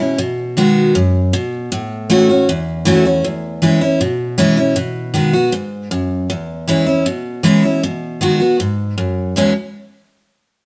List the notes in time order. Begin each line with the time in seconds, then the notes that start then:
Already playing: B2
0.00 C#4 E4
0.18 B2
0.57 D#3 G#3 B3 F#4
0.95 F#2
1.33 B2
1.72 A2
2.10 E3 A3 C#4 F#4
2.29 C#4 F#4
2.49 E2
2.85 E3 A3 C#4 F#4
3.05 C#4 F#4
3.24 E2
3.62 E3 G#3 C#4 E4
3.81 C#4 E4
4.01 B2
4.38 E3 G#3 C#4 E4
4.57 C#4 E4
4.76 B2
5.14 D#3 G#3 B3 F#4
5.33 B3 F#4
5.52 G#2
5.91 F#2
6.30 E2
6.68 E3 G#3 C#4 E4
6.86 C#4 E4
7.06 B2
7.43 E3 G#3 C#4 E4
7.63 C#4 E4
7.83 B2
8.21 D#3 G#3 B3 F#4
8.40 B3 F#4
8.60 G#2
8.98 F#2
9.36 E2 B2 E3 G#3 C#4 E4